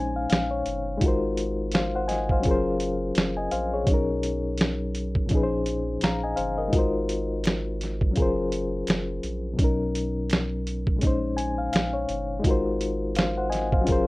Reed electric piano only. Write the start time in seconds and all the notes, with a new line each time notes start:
Already playing: A#2 G#3 C#4 D#4 C5 G#5
0.16 F5
0.31 F5
0.51 C#5
0.97 G#3 D#4
1.02 F4 F#4
1.06 A#4 C5
1.74 C5 F5
1.95 C5 F#5
2.08 D#5 G#5
2.31 C5 F5
2.40 F#3 C#4
2.44 F4 G#4
2.49 A#4 C5
3.37 D#5 G#5
3.52 C5 F5
3.73 G#4 C#5
3.83 B2 F#3
3.88 C#4 D#4
3.94 A#4
5.26 A#2 F3
5.30 C#4 D#4
5.35 G#4 B4
5.43 C5
6.03 F5 A#5
6.23 D#5 G#5
6.36 C5 F5
6.58 A#4 D#5
6.68 G#3 D#4
6.72 F4 F#4
6.76 A#4 C5
8.11 F#3 C#4
8.16 F4 G#4 A#4
8.22 C5
9.54 B2 F#3
9.59 C#4 D#4
9.64 A#4
10.96 A#2 G#3
11.01 C#4 D#4
11.07 C5
11.37 G#5
11.58 F5
11.73 F5
11.94 C#5
12.40 G#3 D#4
12.44 F4 F#4
12.48 A#4 C5
13.16 C5 F5
13.38 C5 F#5
13.50 D#5 G#5
13.73 C5 F5
13.81 F#3 C#4
13.86 F4 G#4
13.90 A#4 C5